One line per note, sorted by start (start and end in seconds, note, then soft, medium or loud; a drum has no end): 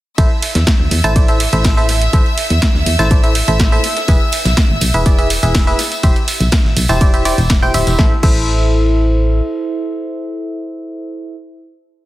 0.18 0.27 A1 loud
0.18 0.28 E4 medium
0.18 0.28 A4 medium
0.18 0.28 C5 medium
0.18 0.28 E5 loud
0.18 8.00 E5 medium
0.18 8.00 E6 medium
0.18 kick loud
0.18 closed hi-hat medium
0.18 ride medium
0.42 open hi-hat loud
0.42 ride medium
0.55 0.64 E2 loud
0.55 snare medium
0.55 closed hi-hat medium
0.67 kick loud
0.67 snare loud
0.67 closed hi-hat medium
0.67 ride medium
0.80 0.88 D2 medium
0.91 1.01 E2 loud
0.91 open hi-hat loud
0.91 ride medium
1.04 1.47 A1 medium
1.04 1.13 E4 loud
1.04 1.13 A4 medium
1.04 1.13 C5 medium
1.04 1.13 A5 loud
1.04 closed hi-hat medium
1.16 1.25 E4 medium
1.16 1.25 A4 medium
1.16 1.25 C5 medium
1.16 1.25 D5 medium
1.16 kick loud
1.16 closed hi-hat medium
1.16 ride medium
1.28 1.38 E4 medium
1.28 1.38 A4 medium
1.28 1.38 C5 medium
1.28 1.38 E5 medium
1.28 closed hi-hat soft
1.40 open hi-hat loud
1.40 ride medium
1.53 2.08 A1 loud
1.53 1.74 E4 medium
1.53 1.74 A4 medium
1.53 1.74 C5 medium
1.53 1.74 E5 medium
1.53 closed hi-hat medium
1.64 kick loud
1.64 snare loud
1.64 closed hi-hat medium
1.64 open hi-hat medium
1.77 1.87 E4 medium
1.77 1.87 A4 medium
1.77 1.87 C5 medium
1.77 1.87 E5 loud
1.77 snare soft
1.89 snare soft
1.89 open hi-hat loud
1.89 ride medium
2.02 closed hi-hat medium
2.13 2.23 A1 loud
2.13 2.23 E4 medium
2.13 2.23 A4 medium
2.13 2.23 C5 medium
2.13 2.23 E5 loud
2.13 kick loud
2.13 closed hi-hat medium
2.13 ride medium
2.26 ride soft
2.38 open hi-hat loud
2.38 ride medium
2.50 2.59 E2 loud
2.50 closed hi-hat medium
2.62 kick loud
2.62 snare loud
2.62 closed hi-hat medium
2.62 ride medium
2.75 2.83 D2 medium
2.75 snare soft
2.86 2.96 E2 loud
2.86 open hi-hat loud
2.86 ride medium
2.99 3.42 A1 medium
2.99 3.08 E4 loud
2.99 3.08 A4 medium
2.99 3.08 C5 medium
2.99 3.08 A5 loud
2.99 snare medium
2.99 closed hi-hat medium
3.11 3.20 E4 medium
3.11 3.20 A4 medium
3.11 3.20 C5 medium
3.11 3.20 D5 medium
3.11 kick loud
3.11 closed hi-hat medium
3.11 ride medium
3.23 3.33 E4 medium
3.23 3.33 A4 medium
3.23 3.33 C5 medium
3.23 3.33 E5 medium
3.23 closed hi-hat soft
3.35 open hi-hat loud
3.35 ride medium
3.48 3.79 A1 loud
3.48 3.69 E4 medium
3.48 3.69 A4 medium
3.48 3.69 C5 medium
3.48 3.69 E5 loud
3.48 closed hi-hat medium
3.60 kick loud
3.60 snare loud
3.60 closed hi-hat medium
3.60 ride medium
3.72 3.82 E4 medium
3.72 3.82 A4 medium
3.72 3.82 C5 medium
3.72 3.82 E5 loud
3.84 open hi-hat loud
3.84 ride medium
3.97 snare soft
3.97 closed hi-hat medium
4.08 4.18 E1 loud
4.08 4.19 E4 medium
4.08 4.19 G#4 medium
4.08 4.19 B4 medium
4.08 4.19 E5 loud
4.08 kick loud
4.08 closed hi-hat medium
4.08 ride medium
4.08 tambourine soft
4.32 open hi-hat loud
4.32 ride medium
4.32 tambourine medium
4.45 4.54 B1 loud
4.45 snare medium
4.45 closed hi-hat medium
4.45 tambourine medium
4.57 kick loud
4.57 snare loud
4.57 closed hi-hat medium
4.57 ride medium
4.57 tambourine soft
4.70 4.78 G#1 medium
4.81 4.91 B1 loud
4.81 open hi-hat loud
4.81 ride medium
4.81 tambourine loud
4.94 5.37 E1 medium
4.94 5.03 E4 loud
4.94 5.03 G#4 medium
4.94 5.03 B4 medium
4.94 5.03 E5 loud
4.94 closed hi-hat medium
4.94 tambourine medium
5.05 5.16 E4 medium
5.05 5.16 G#4 medium
5.05 5.16 B4 medium
5.05 5.16 D5 medium
5.05 kick loud
5.05 closed hi-hat medium
5.05 ride medium
5.05 tambourine soft
5.18 5.28 E4 medium
5.18 5.28 G#4 medium
5.18 5.28 B4 medium
5.18 5.28 E5 medium
5.18 closed hi-hat soft
5.30 open hi-hat loud
5.30 ride medium
5.30 tambourine loud
5.43 5.74 E1 loud
5.43 5.64 E4 medium
5.43 5.64 G#4 medium
5.43 5.64 B4 medium
5.43 5.64 E5 medium
5.43 closed hi-hat medium
5.43 tambourine medium
5.55 kick loud
5.55 snare loud
5.55 closed hi-hat medium
5.55 open hi-hat medium
5.55 tambourine soft
5.67 5.77 E4 loud
5.67 5.77 G#4 medium
5.67 5.77 B4 medium
5.67 5.77 E5 loud
5.67 snare soft
5.79 snare soft
5.79 open hi-hat loud
5.79 ride medium
5.79 tambourine medium
5.92 closed hi-hat medium
5.92 tambourine medium
6.03 6.13 E1 loud
6.03 6.14 E4 medium
6.03 6.14 G4 medium
6.03 6.14 C5 medium
6.03 6.14 E5 loud
6.03 kick loud
6.03 closed hi-hat medium
6.03 ride medium
6.03 tambourine soft
6.16 closed hi-hat soft
6.16 ride soft
6.28 open hi-hat loud
6.28 ride medium
6.28 tambourine medium
6.40 6.49 B1 loud
6.40 closed hi-hat soft
6.40 tambourine medium
6.52 kick loud
6.52 snare loud
6.52 closed hi-hat medium
6.52 ride medium
6.52 tambourine soft
6.65 6.73 A1 medium
6.65 snare soft
6.77 6.86 B1 loud
6.77 open hi-hat loud
6.77 ride medium
6.77 tambourine medium
6.88 7.33 E1 medium
6.88 6.98 E4 loud
6.88 6.98 G4 medium
6.88 6.98 C5 medium
6.88 6.98 A5 loud
6.88 snare medium
6.88 closed hi-hat medium
6.88 tambourine medium
7.01 7.11 E4 medium
7.01 7.11 G4 medium
7.01 7.11 C5 medium
7.01 7.11 D5 medium
7.01 kick loud
7.01 closed hi-hat medium
7.01 ride medium
7.01 tambourine soft
7.14 7.23 E4 medium
7.14 7.23 G4 medium
7.14 7.23 C5 medium
7.14 7.23 E5 medium
7.14 closed hi-hat soft
7.25 7.36 E4 loud
7.25 7.36 G4 medium
7.25 7.36 C5 medium
7.25 7.36 D5 loud
7.25 open hi-hat loud
7.25 ride medium
7.25 tambourine loud
7.38 7.62 E1 loud
7.38 closed hi-hat medium
7.38 tambourine medium
7.50 kick loud
7.50 snare loud
7.50 closed hi-hat medium
7.50 ride medium
7.50 tambourine soft
7.62 7.71 E1 medium
7.62 7.72 E4 loud
7.62 7.72 G4 medium
7.62 7.72 C5 medium
7.62 7.72 G5 loud
7.74 7.84 D1 medium
7.74 7.96 E4 medium
7.74 7.96 G4 medium
7.74 7.96 C5 medium
7.74 7.96 E5 medium
7.74 open hi-hat loud
7.74 ride medium
7.74 tambourine medium
7.87 7.96 E1 medium
7.87 snare medium
7.87 closed hi-hat medium
7.87 tambourine medium
7.99 8.13 A1 loud
7.99 8.13 E4 medium
7.99 8.13 A4 medium
7.99 8.13 C5 medium
7.99 8.13 E5 loud
7.99 kick loud
7.99 snare medium
8.23 9.41 A1 loud
8.23 11.36 E4 medium
8.23 11.36 A4 medium
8.23 11.36 C5 medium
8.23 11.36 E5 medium
8.23 kick loud
8.23 crash medium